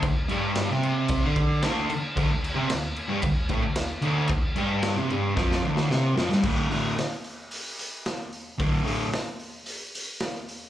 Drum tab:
CC |x-x-x-x-x-x-x-x-|x-x-x-x-x-x-x-x-|x-x-x-x---------|x---------------|
HH |----------------|----------------|----------------|--o-o-o-o-o-o-o-|
SD |----o-------o---|----o-------o---|----o---oo-oo-oo|----o-------o---|
BD |o-------o-o-----|o-------o-o-----|o-------o-------|o---------------|

CC |----------------|
HH |o-o-o-o-o-o-o-o-|
SD |----o-------o---|
BD |o---------------|